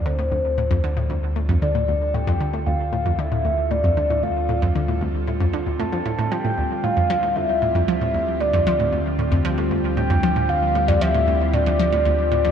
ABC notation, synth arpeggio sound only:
X:1
M:4/4
L:1/16
Q:1/4=115
K:Dm
V:1 name="Synth arpeggio sound" clef=bass
D, A,, D,, z A,, F,, D, A,, D,, z A,, F,, D, A,, D,, z | A,, F,, D, A,, D,, z A,, F,, D, A,, D,, z A,, F,, D, A,, | D,, z A,, F,, D, A,, D,, z A,, F,, D, D,, A,, F,, A,, A,, | F, A,, D,, z A,, F,, F, A,, D,, z A,, F,, F, A,, D,, z |
A,, F,, F, A,, D,, z A,, F,, F, A,, D,, z A,, F,, F, A,, | D,, z A,, F,, F, A,, D,, z A,, F,, F, A,, D,, z A,, F,, |]